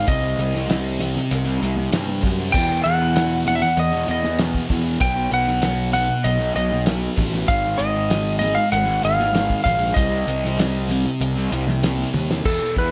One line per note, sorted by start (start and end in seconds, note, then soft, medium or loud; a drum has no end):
0.06 0.33 C2 loud
0.06 0.53 C3 medium
0.06 0.23 G3 loud
0.06 0.20 C4 loud
0.06 1.88 D#5 loud
0.06 kick loud
0.06 closed hi-hat loud
0.21 0.68 G3 medium
0.21 0.68 C4 medium
0.38 1.16 C2 medium
0.38 closed hi-hat medium
0.55 snare soft
0.67 0.98 C3 loud
0.67 0.99 G3 loud
0.67 1.00 C4 loud
0.67 snare loud
0.67 closed hi-hat loud
0.99 1.46 C3 medium
0.99 1.15 G3 medium
0.99 1.14 C4 medium
0.99 closed hi-hat medium
0.99 low conga medium
1.15 muted distorted electric guitar stroke soft
1.15 snare soft
1.31 1.57 C2 medium
1.31 closed hi-hat loud
1.45 1.61 G3 medium
1.45 1.62 C4 medium
1.61 1.87 C2 medium
1.61 1.90 C3 medium
1.61 1.77 G3 medium
1.61 1.76 C4 medium
1.61 closed hi-hat medium
1.76 muted distorted electric guitar stroke medium
1.76 high conga medium
1.76 low conga medium
1.91 2.20 G2 medium
1.91 2.20 C3 medium
1.91 2.22 G3 loud
1.91 2.23 C4 loud
1.91 snare loud
1.91 closed hi-hat loud
1.91 high conga medium
2.07 high conga medium
2.21 2.51 F#2 medium
2.21 2.51 C3 medium
2.21 2.39 G3 medium
2.21 2.37 C4 medium
2.21 kick medium
2.21 closed hi-hat medium
2.21 low conga medium
2.38 2.53 G3 medium
2.38 2.52 C4 medium
2.52 3.00 E2 loud
2.52 2.80 E2 loud
2.52 2.70 B2 medium
2.52 2.67 E3 loud
2.52 2.83 G5 loud
2.52 kick loud
2.52 crash loud
2.68 3.14 B2 medium
2.68 3.15 E3 medium
2.84 3.63 E2 medium
2.84 3.46 F#5 loud
2.84 closed hi-hat medium
3.14 3.44 E2 loud
3.14 3.45 B2 medium
3.14 3.46 E3 loud
3.14 snare loud
3.14 closed hi-hat medium
3.45 3.92 E2 medium
3.45 3.61 B2 medium
3.45 3.60 E3 medium
3.45 3.54 F#5 medium
3.45 closed hi-hat medium
3.45 high conga medium
3.45 low conga medium
3.55 3.61 E5 medium
3.62 3.79 F#5 loud
3.62 muted distorted electric guitar stroke soft
3.77 4.03 E2 loud
3.77 4.10 D#5 medium
3.77 closed hi-hat medium
3.92 4.08 B2 medium
3.92 4.09 E3 medium
4.07 4.37 E2 medium
4.07 4.60 E2 medium
4.07 4.23 B2 medium
4.07 4.22 E3 medium
4.07 4.39 D#5 medium
4.07 closed hi-hat medium
4.23 muted distorted electric guitar stroke medium
4.23 snare soft
4.23 high conga medium
4.39 4.68 E2 loud
4.39 4.69 B2 loud
4.39 4.70 E3 loud
4.39 snare loud
4.39 closed hi-hat loud
4.39 high conga medium
4.54 kick medium
4.69 4.99 E2 medium
4.69 4.96 E2 medium
4.69 4.86 B2 medium
4.69 4.83 E3 medium
4.69 kick medium
4.69 closed hi-hat medium
4.69 low conga medium
4.84 4.99 B2 medium
4.84 4.99 E3 medium
5.00 5.27 B1 loud
5.00 5.47 B2 loud
5.00 5.17 F#3 loud
5.00 5.15 B3 loud
5.00 5.33 G5 loud
5.00 kick loud
5.00 closed hi-hat loud
5.16 5.61 F#3 medium
5.16 5.63 B3 medium
5.31 6.09 B1 medium
5.31 5.92 F#5 loud
5.31 closed hi-hat medium
5.48 snare soft
5.61 5.91 B2 loud
5.61 5.93 F#3 loud
5.61 5.95 B3 loud
5.61 snare loud
5.61 closed hi-hat loud
5.92 6.39 B2 medium
5.92 6.08 F#3 medium
5.92 6.07 B3 medium
5.92 6.25 F#5 loud
5.92 closed hi-hat medium
5.92 low conga medium
6.08 muted distorted electric guitar stroke medium
6.24 6.51 B1 medium
6.24 6.55 D#5 medium
6.24 closed hi-hat loud
6.38 6.55 F#3 medium
6.38 6.56 B3 medium
6.55 7.07 B1 medium
6.55 6.85 B2 medium
6.55 6.70 F#3 medium
6.55 6.70 B3 medium
6.55 6.85 D#5 medium
6.55 closed hi-hat medium
6.71 muted distorted electric guitar stroke medium
6.71 high conga medium
6.86 7.15 B2 loud
6.86 7.17 F#3 loud
6.86 7.18 B3 loud
6.86 snare loud
6.86 closed hi-hat loud
6.86 high conga medium
7.17 7.43 A1 loud
7.17 7.46 B2 medium
7.17 7.35 F#3 medium
7.17 7.33 B3 medium
7.17 kick medium
7.17 closed hi-hat medium
7.17 low conga medium
7.34 7.48 F#3 medium
7.34 7.47 B3 medium
7.34 snare soft
7.48 7.74 G#1 loud
7.48 7.95 G#2 loud
7.48 7.65 D#3 loud
7.48 7.63 G#3 loud
7.48 7.80 F5 loud
7.48 kick loud
7.48 closed hi-hat loud
7.64 8.09 D#3 medium
7.64 8.11 G#3 medium
7.78 8.57 G#1 medium
7.78 8.36 D#5 loud
7.78 closed hi-hat medium
8.10 8.39 G#2 loud
8.10 8.40 D#3 loud
8.10 8.42 G#3 loud
8.10 snare loud
8.10 closed hi-hat loud
8.39 8.87 G#2 medium
8.39 8.56 D#3 medium
8.39 8.56 D#5 medium
8.39 closed hi-hat medium
8.39 high conga medium
8.39 low conga medium
8.43 8.55 G#3 medium
8.55 8.72 F5 medium
8.55 muted distorted electric guitar stroke medium
8.72 8.98 G#1 medium
8.72 9.04 F#5 loud
8.72 closed hi-hat medium
8.86 9.02 D#3 medium
8.86 9.03 G#3 medium
9.02 9.55 G#1 medium
9.02 9.31 G#2 medium
9.02 9.17 D#3 medium
9.02 9.17 G#3 medium
9.02 9.63 F5 loud
9.02 closed hi-hat medium
9.18 muted distorted electric guitar stroke medium
9.18 snare soft
9.18 high conga medium
9.32 9.62 G#2 loud
9.32 9.63 D#3 loud
9.32 9.64 G#3 loud
9.32 snare loud
9.32 closed hi-hat loud
9.32 high conga medium
9.50 kick medium
9.63 9.91 A#1 medium
9.63 9.93 G#2 medium
9.63 9.81 D#3 medium
9.63 9.78 G#3 medium
9.63 9.96 F5 loud
9.63 kick medium
9.63 closed hi-hat medium
9.63 low conga medium
9.79 9.94 D#3 medium
9.79 9.94 G#3 medium
9.94 10.22 C2 loud
9.94 10.42 C3 loud
9.94 10.12 G3 medium
9.94 10.09 C4 loud
9.94 12.09 D#5 medium
9.94 kick loud
9.94 closed hi-hat loud
10.10 10.58 G3 medium
10.10 10.59 C4 medium
10.27 11.05 C2 medium
10.27 closed hi-hat medium
10.45 snare soft
10.58 10.87 C3 medium
10.58 10.89 G3 loud
10.58 10.90 C4 loud
10.58 snare loud
10.58 closed hi-hat loud
10.89 11.36 C3 medium
10.89 11.05 G3 medium
10.89 11.04 C4 medium
10.89 closed hi-hat medium
10.89 low conga medium
11.06 muted distorted electric guitar stroke medium
11.21 11.47 C2 medium
11.21 closed hi-hat loud
11.35 11.51 G3 medium
11.35 11.52 C4 medium
11.51 12.04 C2 medium
11.51 11.82 C3 medium
11.51 11.67 G3 medium
11.51 11.66 C4 medium
11.51 closed hi-hat medium
11.67 muted distorted electric guitar stroke soft
11.67 snare soft
11.67 high conga medium
11.67 low conga medium
11.83 12.13 C3 loud
11.83 12.13 G3 loud
11.83 12.14 C4 loud
11.83 snare loud
11.83 closed hi-hat loud
11.83 high conga medium
11.98 high conga medium
12.14 12.40 D#2 medium
12.14 12.43 C3 medium
12.14 12.31 G3 medium
12.14 12.29 C4 medium
12.14 high tom medium
12.14 low conga medium
12.30 12.45 G3 medium
12.30 12.43 C4 medium
12.30 snare loud
12.45 12.76 E2 medium
12.45 12.58 E2 loud
12.45 12.77 B2 medium
12.45 12.78 E3 medium
12.45 12.77 A4 medium
12.45 kick loud
12.45 crash medium
12.76 12.91 E2 medium
12.76 12.91 B2 medium
12.76 12.91 E3 medium
12.76 12.91 B4 medium
12.76 kick medium
12.76 snare soft
12.76 closed hi-hat medium